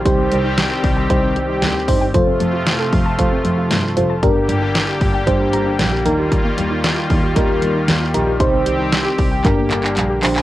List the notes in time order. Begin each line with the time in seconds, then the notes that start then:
0.05 C2 D#3 G3 C4 D#4 G4 C5, kick, closed hi-hat
0.19 C4
0.32 C2 G3, closed hi-hat
0.45 D#4
0.58 G3, snare, closed hi-hat
0.71 G4
0.84 C2 G3, kick, open hi-hat
0.97 G5
1.10 C2 G3 D#4 G4 C5, kick, closed hi-hat
1.23 C4
1.36 C2 G3, closed hi-hat
1.49 D#4
1.62 D2 G3, snare, closed hi-hat
1.75 G4
1.88 G1 D#4 G4 C5, kick, open hi-hat
2.01 G5
2.14 F2 C3 F3 A3 F4 A4 C5, kick, closed hi-hat
2.27 C4
2.40 F2 A3, closed hi-hat
2.53 F4
2.66 A3, snare, closed hi-hat
2.79 A4
2.92 F2 A3, kick, open hi-hat
3.05 A5
3.18 F2 A3 F4 A4 C5, kick, closed hi-hat
3.31 C4
3.45 F2 A3, closed hi-hat
3.58 F4
3.71 G2 A3, snare, closed hi-hat
3.84 A4
3.97 F1 F4 A4 C5, closed hi-hat
4.10 A5
4.23 G1 D3 G3 A#3 D4 G4 A#4, kick, closed hi-hat
4.36 A#3
4.49 G1 G3, closed hi-hat
4.62 D4
4.75 G3, snare, closed hi-hat
4.88 G4
5.01 G1 G3, kick, open hi-hat
5.14 G5
5.27 G1 G3 D4 G4 C5, kick, closed hi-hat
5.40 A#3
5.53 G1 G3 A#5, closed hi-hat
5.66 D4
5.79 A#1 G3 G5, snare, closed hi-hat
5.92 G4
6.05 D#2 D#3 D#4 F4 G4 A#4, closed hi-hat
6.18 G4
6.31 G3, kick, closed hi-hat
6.45 A#3
6.58 D#2 G3, closed hi-hat
6.71 D#4
6.84 G3, snare, closed hi-hat
6.97 F4
7.10 D#2 G3, kick, open hi-hat
7.23 G4
7.36 D#2 G3 D#4 G4 A#4, kick, closed hi-hat
7.49 A#3
7.62 D#2 G3, closed hi-hat
7.75 D#4
7.88 D#2 G3, snare, closed hi-hat
8.01 F4
8.14 A#1 D#4 G4 A#4, closed hi-hat
8.27 G4
8.40 C2 G3 C4 D#4 G4 C5, kick, closed hi-hat
8.53 C4
8.66 C2 G3, closed hi-hat
8.79 D#4
8.92 G3, snare, closed hi-hat
9.05 G4
9.18 C2 G3, kick, open hi-hat
9.32 G5
9.45 G1 D3 G3 A#3 D4 G4 A#4, kick, clap, closed hi-hat
9.58 A#3
9.71 G1 G3, clap, closed hi-hat
9.84 D4, clap
9.97 A#1 G3, clap, closed hi-hat
10.10 G4
10.23 A#1 D4 G4 C5, clap, open hi-hat
10.36 G5, clap